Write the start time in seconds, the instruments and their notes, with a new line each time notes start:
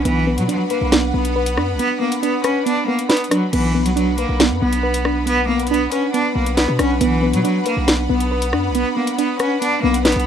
0.05 808-style bass B1, cello E3, synth pluck B3, analog synth pad D4 B4 F#5 B5, closed hi-hat
0.27 synth pluck B3
0.38 808-style bass B2, cello F#3, closed hi-hat
0.48 cello F#3, synth pluck D4, closed hi-hat
0.70 cello A#3, synth pluck B4, closed hi-hat
0.81 808-style bass B1
0.92 synth pluck B3, snare, closed hi-hat
1.14 808-style bass B1, synth pluck B3, cello B3
1.25 closed hi-hat
1.36 synth pluck B4
1.46 closed hi-hat
1.57 808-style bass F#2, synth pluck D4, cross-stick
1.74 808-style bass B1
1.78 cello B3, synth pluck B3, closed hi-hat
2.01 cello A#3, synth pluck B3
2.12 closed hi-hat
2.23 cello B3, synth pluck D4, closed hi-hat
2.44 cello C#4, synth pluck B4, cross-stick, closed hi-hat
2.66 synth pluck B3, cello D4, closed hi-hat
2.87 cello A#3, synth pluck B3
2.99 closed hi-hat
3.09 cello B3, synth pluck B4, snare, closed hi-hat
3.17 closed hi-hat
3.24 closed hi-hat
3.31 cello F#3, synth pluck D4, cross-stick, closed hi-hat
3.53 808-style bass B1, cello E3, synth pluck B3, analog synth pad D4 B4 F#5 B5, closed hi-hat, crash
3.75 synth pluck B3
3.85 cello F#3, closed hi-hat
3.96 cello F#3, synth pluck D4, closed hi-hat
4.18 cello A#3, synth pluck B4, closed hi-hat
4.29 808-style bass B1
4.40 synth pluck B3, snare, closed hi-hat
4.51 808-style bass F#2
4.61 808-style bass B1, cello B3, synth pluck B3
4.73 closed hi-hat
4.83 synth pluck B4
4.94 closed hi-hat
5.05 synth pluck D4, cross-stick
5.26 synth pluck B3, cello B3, closed hi-hat
5.48 cello A#3, synth pluck B3
5.59 closed hi-hat
5.67 cello B3, closed hi-hat
5.71 synth pluck D4, closed hi-hat
5.92 cello C#4, synth pluck B4, closed hi-hat
6.13 synth pluck B3, cello D4, closed hi-hat
6.35 808-style bass B1, cello A#3, synth pluck B3
6.46 closed hi-hat
6.57 cello B3, synth pluck B4, snare, closed hi-hat
6.68 808-style bass B2
6.79 808-style bass B1, cello C#4, synth pluck D4, cross-stick, closed hi-hat
7.01 808-style bass B1, cello E3, synth pluck B3, closed hi-hat
7.23 synth pluck B3
7.33 808-style bass B2, cello F#3, closed hi-hat
7.44 cello F#3, synth pluck D4, closed hi-hat
7.66 cello A#3, synth pluck B4, closed hi-hat
7.77 808-style bass B1
7.88 synth pluck B3, snare, closed hi-hat
8.09 808-style bass B1, synth pluck B3, cello B3
8.20 closed hi-hat
8.31 synth pluck B4
8.42 closed hi-hat
8.53 808-style bass F#2, synth pluck D4, cross-stick
8.69 808-style bass B1
8.74 cello B3, synth pluck B3, closed hi-hat
8.97 cello A#3, synth pluck B3
9.07 closed hi-hat
9.18 cello B3, synth pluck D4, closed hi-hat
9.39 cello C#4, synth pluck B4, cross-stick, closed hi-hat
9.62 synth pluck B3, cello D4, closed hi-hat
9.83 808-style bass B1, cello A#3, synth pluck B3
9.94 closed hi-hat
10.05 808-style bass A#1, cello B3, synth pluck B4, snare, closed hi-hat
10.12 808-style bass B1, closed hi-hat
10.20 closed hi-hat